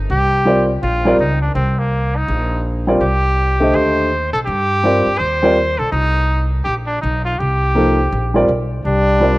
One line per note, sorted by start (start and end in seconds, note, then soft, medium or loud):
0.10 0.79 C2 medium
0.10 0.66 G4 medium
0.45 0.66 G3 medium
0.45 0.67 C4 medium
0.45 0.67 F4 medium
0.45 0.67 A#4 soft
0.45 0.67 D5 medium
0.83 1.17 A#1 medium
0.83 1.17 F4 medium
1.05 1.18 G3 medium
1.05 1.18 C4 medium
1.05 1.18 F4 medium
1.05 1.18 A#4 medium
1.05 1.18 D5 medium
1.19 1.53 C#2 medium
1.19 1.41 D#4 medium
1.42 1.54 D4 medium
1.55 2.25 C2 medium
1.55 1.80 C4 medium
1.79 2.18 A#3 medium
2.16 2.66 D#4 medium
2.28 2.98 A#1 medium
2.87 3.00 G3 medium
2.87 3.00 C4 medium
2.87 3.00 F4 medium
2.87 3.01 A#4 medium
2.87 3.00 D5 medium
3.00 3.70 C2 medium
3.00 3.76 G4 medium
3.60 4.08 D3 medium
3.60 4.08 A3 medium
3.60 4.08 G4 medium
3.60 4.09 C5 medium
3.60 4.09 D#5 medium
3.73 4.29 D#2 medium
3.73 4.32 C5 medium
4.33 4.46 B1 medium
4.33 4.39 A4 medium
4.46 5.03 G2 medium
4.46 5.20 G4 loud
4.84 5.04 G3 medium
4.84 5.04 C4 medium
4.84 5.05 F4 medium
4.84 5.05 A#4 soft
4.84 5.05 D5 medium
5.06 5.19 G2 medium
5.18 5.75 D#2 medium
5.18 5.80 C5 medium
5.42 5.55 G3 medium
5.42 5.55 C4 medium
5.42 5.56 F4 medium
5.42 5.56 A#4 medium
5.42 5.56 D5 medium
5.78 5.92 B1 medium
5.78 5.91 A4 medium
5.92 6.62 C2 medium
5.92 6.48 D#4 medium
6.64 7.00 A#1 medium
6.64 6.75 G4 medium
6.86 7.00 D4 medium
7.01 7.37 B1 medium
7.01 7.23 D#4 medium
7.25 7.40 F4 medium
7.39 8.09 C2 medium
7.39 8.48 G4 medium
7.75 7.96 F3 medium
7.75 7.96 A#3 medium
7.75 7.96 D#4 soft
7.75 7.96 A4 medium
7.75 7.96 C5 medium
8.12 8.46 A#1 medium
8.34 8.47 G3 medium
8.34 8.47 C4 medium
8.34 8.47 F4 medium
8.34 8.47 A#4 medium
8.34 8.48 D5 medium
8.49 8.82 B1 medium
8.85 9.38 C2 medium
8.85 9.38 G3 medium
8.85 9.38 D4 medium
9.20 9.38 G3 soft
9.20 9.38 C4 soft
9.20 9.38 F4 soft
9.20 9.38 A#4 soft
9.20 9.38 D5 medium